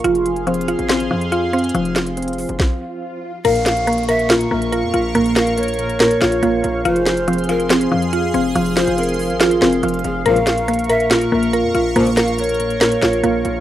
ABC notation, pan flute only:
X:1
M:4/4
L:1/8
Q:1/4=141
K:Bbdor
V:1 name="Pan flute"
z8 | z8 | f3 =e z4 | z f d6 |
c3 B z4 | z c B4- B A | f3 =e z4 | z f d6 |]